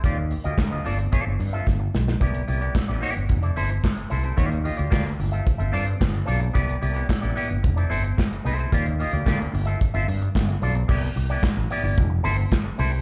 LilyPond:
<<
  \new Staff \with { instrumentName = "Clean electric guitar" } { \time 4/4 \key c \major \tempo 4 = 111 <bes f' g' d''>16 r8 <bes f' g' ees''>16 r16 <bes f' g' ees''>16 <c' f' a' d''>16 r16 <c' f' a' d''>16 r8 <c' f' a' e''>16 r4 | <b e' g' d''>16 r16 <b e' g' d''>16 <b e' g' d''>16 r16 <b e' g' d''>16 <b e' g' d''>16 r8 <c' e' a' d''>16 <c' e' a' c''>16 r8. <c' e' a' c''>16 <c' e' a' c''>16 | <bes f' g' d''>16 r16 <bes f' g' ees''>16 <bes f' g' d''>16 <bes f' g' d''>16 r8 <c' f' a' e''>16 r16 <c' f' a' e''>16 <c' f' a' d''>16 r8. <c' f' a' d''>16 r16 | <b e' g' d''>16 r16 <b e' g' d''>16 <b e' g' d''>16 r16 <b e' g' d''>16 <b e' g' d''>16 r8 <c' e' a' d''>16 <c' e' a' c''>16 r8. <c' e' a' c''>16 <c' e' a' c''>16 |
<bes f' g' d''>16 r16 <bes f' g' ees''>16 <bes f' g' d''>16 <bes f' g' d''>16 r8 <c' f' a' e''>16 r16 <c' f' a' e''>16 r4 <c' f' a' d''>16 r16 | <b e' g' d''>16 r8 <b e' g' d''>16 r8 <b e' g' d''>16 <b e' g' d''>16 r8 <c' e' a' c''>16 r8. <c' e' a' c''>16 r16 | }
  \new Staff \with { instrumentName = "Fretless electric bass" } { \clef bass \time 4/4 \key c \major ees,8. d,16 d,8 g,,8 r16 g,,16 g,8 g,,8 b,,8 | c,8 c,8 r16 a,,16 r16 g,,16 f,,8 g,,8 r8 c,8 | ees,8. d,16 d,8 g,,8 r16 g,,16 g,8 g,,8 b,,8 | c,8 c,8 r16 a,,16 r16 g,,16 f,,8 g,,8 r8 c,8 |
ees,8. d,16 d,8 g,,8 r16 g,,16 g,8 g,,8 b,,8 | c,8 c,8 r16 a,,16 r16 g,,16 f,,8 g,,8 r8 c,8 | }
  \new DrumStaff \with { instrumentName = "Drums" } \drummode { \time 4/4 <hh bd>8 hho16 hh16 <hc hh bd sn>8 hho16 hh16 <hh bd>8 hho16 hh16 <bd sn>8 sn16 sn16 | <hh bd>16 hh16 hho16 hh16 <hc bd sn>16 hh16 hho16 hh16 <hh bd>16 hh16 hho16 hh16 <hc bd sn>16 hh16 hho16 hh16 | <hh bd>16 hh16 hho16 hh16 <hc bd sn>16 hh16 hho16 hh16 <hh bd>16 hh16 hho16 hh16 <hc bd sn>16 hh16 hho16 hh16 | <hh bd>16 hh16 hho16 hh16 <hc bd sn>16 hh16 hho16 hh16 <hh bd>16 hh16 hho16 hh16 <hc bd sn>16 hh16 hho16 hh16 |
<hh bd>16 hh16 hho16 hh16 <hc bd sn>16 hh16 hho16 hh16 <hh bd>16 hh16 hho16 hh16 <hc bd sn>16 hh16 hho16 hh16 | <cymc bd>8 hho8 <hc hh bd sn>8 hho8 <hh bd>8 hho8 <hc hh bd sn>8 hho8 | }
>>